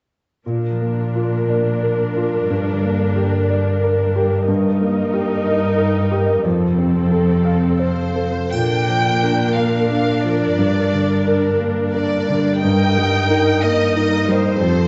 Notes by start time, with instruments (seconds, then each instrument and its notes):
0.46 grand piano A#2, cello section A#2, harp A#2, viola section D4 A#4
0.71 harp F3
0.81 grand piano A#3
0.93 harp A#3
1.15 harp D4, grand piano F4
1.38 harp A#4
1.49 grand piano D5
1.60 harp D4
1.82 grand piano A#4, harp D5
2.05 harp A#4
2.16 grand piano F4
2.28 harp D4
2.49 cello section G2, harp G2, grand piano G2
2.72 harp D3
2.84 grand piano A#3
2.94 harp A#3
3.16 harp D4, grand piano G4
3.37 harp A#4
3.49 grand piano D5
3.60 harp D4
3.82 grand piano A#4, harp D5
4.04 harp A#4
4.16 grand piano G4
4.26 harp D4
4.47 harp G2, grand piano G2, viola section D#4 A#4
4.70 harp G3
4.81 grand piano A#3
4.91 harp A#3
5.13 harp D#4, grand piano G4
5.35 harp A#4
5.46 grand piano D#5
5.57 harp D#4
5.78 grand piano A#4, harp D#5
6.01 harp A#4
6.12 grand piano G4
6.23 harp D#4
6.44 grand piano F2, cello section F2, harp F2, viola section C4 A4
6.67 harp C3
6.78 grand piano C4
6.90 harp C4
7.11 harp F4, grand piano A4
7.33 harp A4
7.45 grand piano F5
7.56 harp C5
7.79 grand piano C5, violin section C5, harp F5
8.02 harp C5
8.16 grand piano A4
8.29 harp A4
8.51 harp A#2, grand piano A#2, cello section A#2, viola section D4 A#4, violin section G5, triangle
8.88 grand piano F3, harp D4
9.22 grand piano D4 A#4, harp A#4
9.55 grand piano A#3, violin section F5, harp F5
9.89 grand piano D4 A#4, harp D5, violin section F5
10.23 grand piano F3, harp F4, violin section D5
10.57 harp G2, cello section G2, grand piano G2
10.92 grand piano D3, harp D4
11.25 grand piano D4 A#4, harp A#4
11.59 grand piano A#3, harp G5
11.92 grand piano D4 A#4, harp D5, violin section D5
12.28 grand piano D3, harp G4
12.63 harp G2, grand piano G2, viola section D#4 A#4, violin section G5
12.97 grand piano G3, harp D#4
13.30 grand piano D#4 A#4, harp A#4
13.63 grand piano A#3, violin section D#5, harp G5
13.96 grand piano D#4 A#4, harp D#5, violin section D#5
14.28 grand piano G3, harp G4, violin section C5
14.60 grand piano F2, harp F2, cello section F2, viola section C4 A4